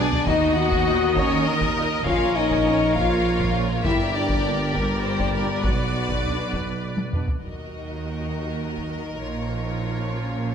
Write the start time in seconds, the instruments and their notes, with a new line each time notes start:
Already playing: tuba B1, double bass section B1, cello section B2, viola section B3 D5, violin section G#4 D5
0.00 french horn section D4
0.12 taiko low
0.26 double bass section D#2, tuba D#2, cello section D#3, french horn section D#4, violin section F#4 D#5, viola section D#5, taiko
0.57 french horn section F#4, violin section F#5
0.72 taiko
0.87 trombone section A#2 D#4
1.16 french horn section C#4, violin section A#4 C#5, viola section A#4, taiko
1.46 french horn section D#4, violin section D#5
1.61 taiko
1.77 trombone section A#2 D#4
2.05 double bass section A#1, tuba A#1, cello section A#2, violin section C#4 F5, french horn section F4, viola section C#5, taiko
2.35 french horn section D#4, violin section D#5
2.51 taiko
2.66 trombone section A#2 C#4
2.94 french horn section F4, violin section F4 F5, taiko
3.40 taiko
3.56 trombone section A#2 C#4
3.84 double bass section G1, tuba G1, cello section G2, french horn section E4, violin section G4 E5, viola section A#4 D5, taiko
4.14 french horn section D4, violin section D5
4.29 taiko
4.46 trombone section A#2 D4
4.74 french horn section G3, violin section G4 A#4, taiko
5.04 violin section C5
5.19 taiko
5.34 trombone section A#2 D4, violin section A#4
5.63 double bass section B1, tuba B1, cello section B2, french horn section F#3, violin section F#4 D5, viola section B4, taiko
6.09 taiko
6.23 trombone section B2 D4, taiko low
6.53 taiko
6.98 taiko high
7.13 trombone section B2 D4, taiko low-mid
7.28 taiko low
7.42 double bass section D#2, cello section D#3, french horn section F#3 D#4, viola section F#4, violin section A#4 D#5, taiko
8.77 taiko
9.22 double bass section A#1, cello section A#2, french horn section F3, viola section F4, violin section C#5
10.11 french horn section C#4